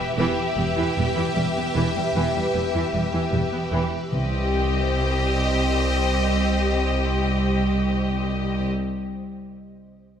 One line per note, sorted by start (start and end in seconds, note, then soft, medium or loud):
0.00 0.16 G4 medium
0.00 0.17 G4 medium
0.00 0.18 B4 medium
0.00 0.14 E5 medium
0.17 0.26 E1 soft
0.17 0.41 E2 medium
0.17 0.26 E2 soft
0.17 0.36 E3 medium
0.17 4.08 G4 soft
0.17 3.88 G4 soft
0.17 4.09 B4 medium
0.17 3.87 E5 soft
0.17 4.08 E5 medium
0.57 0.65 E1 soft
0.57 0.81 E2 soft
0.57 0.66 E2 soft
0.57 0.65 B3 soft
0.76 0.86 E2 soft
0.76 0.95 E3 soft
0.97 1.05 E1 soft
0.97 1.20 E2 soft
0.97 1.05 E2 soft
0.97 1.05 G3 soft
1.16 1.25 E2 soft
1.16 1.34 E3 soft
1.36 1.44 E1 soft
1.36 1.59 E2 soft
1.36 1.44 E2 soft
1.36 1.44 G3 soft
1.56 1.64 E2 soft
1.56 1.64 B3 soft
1.76 1.84 E1 soft
1.76 1.99 E2 soft
1.76 1.84 E2 soft
1.76 1.94 E3 soft
1.96 2.04 E2 soft
1.96 2.04 G3 soft
2.15 2.23 E1 soft
2.15 2.23 E2 soft
2.15 2.39 E2 soft
2.15 2.34 E3 soft
2.35 2.43 E2 soft
2.35 2.43 G3 soft
2.54 2.63 E1 soft
2.54 2.62 E2 soft
2.54 2.78 E2 soft
2.54 2.63 B3 soft
2.74 2.83 E2 soft
2.74 2.92 E3 soft
2.94 3.02 E1 soft
2.94 3.02 E2 soft
2.94 3.18 E2 soft
2.94 3.02 G3 soft
3.13 3.21 E2 soft
3.13 3.32 E3 soft
3.32 3.41 E1 soft
3.32 3.41 E2 soft
3.32 3.57 E2 soft
3.32 3.40 G3 soft
3.52 3.61 E2 soft
3.52 3.60 B3 soft
3.72 3.81 E1 soft
3.72 3.81 E2 soft
3.72 3.97 E2 soft
3.72 3.91 E3 soft
4.11 8.68 C2 soft
4.11 8.71 C3 soft
4.11 8.68 C4 soft
4.11 8.68 G4 soft
4.11 8.69 G4 soft
4.11 8.68 C5 medium
4.11 8.68 D#5 medium
4.11 8.69 D#5 medium